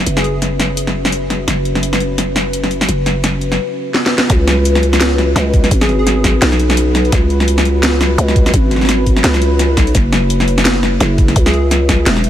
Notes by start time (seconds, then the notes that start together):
Already playing: C#4 F#4 B4 E5
0.06 F#1, closed hi-hat
0.17 G#4, snare
0.24 closed hi-hat
0.42 snare, closed hi-hat
0.60 snare, closed hi-hat
0.77 closed hi-hat
0.87 snare
1.05 snare
1.12 closed hi-hat
1.30 snare, closed hi-hat
1.48 F#1, snare, closed hi-hat
1.65 closed hi-hat
1.75 snare
1.83 closed hi-hat
1.93 snare
2.00 closed hi-hat
2.18 snare, closed hi-hat
2.36 snare
2.53 closed hi-hat
2.64 snare
2.71 closed hi-hat
2.81 snare
2.89 F#1, closed hi-hat
3.06 snare, closed hi-hat
3.24 snare, closed hi-hat
3.41 closed hi-hat
3.52 snare
3.94 snare
4.06 snare
4.18 snare
4.30 C#2, kick, snare, closed hi-hat
4.47 snare, open hi-hat
4.65 closed hi-hat
4.75 snare
4.83 closed hi-hat
4.93 snare
5.01 snare, closed hi-hat
5.18 snare
5.36 C#2, snare, closed hi-hat
5.54 kick, closed hi-hat
5.64 snare, open hi-hat
5.71 G#1, kick, closed hi-hat
5.81 G#4, snare
5.89 open hi-hat
5.99 G#4
6.07 snare, closed hi-hat
6.24 kick, snare, closed hi-hat
6.42 B1, snare, closed hi-hat
6.52 snare
6.60 open hi-hat
6.70 snare
6.77 closed hi-hat
6.95 snare, closed hi-hat
7.05 open hi-hat
7.12 C#2, kick, snare, closed hi-hat
7.30 open hi-hat
7.40 snare
7.48 closed hi-hat
7.58 snare
7.65 closed hi-hat
7.83 snare, closed hi-hat
8.01 snare
8.18 C#2, closed hi-hat
8.28 snare
8.36 kick, closed hi-hat
8.46 snare, open hi-hat
8.54 G#1, kick, closed hi-hat
8.71 snare, open hi-hat
8.76 snare
8.81 snare
8.85 snare
8.89 snare, closed hi-hat
9.07 kick, closed hi-hat
9.16 snare
9.24 C#2, snare, closed hi-hat
9.34 snare
9.42 open hi-hat
9.59 snare, closed hi-hat
9.73 C2, kick, snare, closed hi-hat
9.87 open hi-hat
9.95 F#1 C#4, kick, snare, closed hi-hat
10.13 snare, open hi-hat
10.25 F#4 B4
10.30 closed hi-hat
10.35 E5
10.40 snare
10.48 closed hi-hat
10.58 snare
10.65 snare, closed hi-hat
10.83 snare
11.00 F#1, snare, closed hi-hat
11.18 kick, closed hi-hat
11.28 snare, open hi-hat
11.36 C#2, kick, closed hi-hat
11.46 G#4, snare
11.54 open hi-hat
11.71 snare, closed hi-hat
11.89 kick, snare, closed hi-hat
12.06 E1, snare, closed hi-hat
12.17 snare
12.24 open hi-hat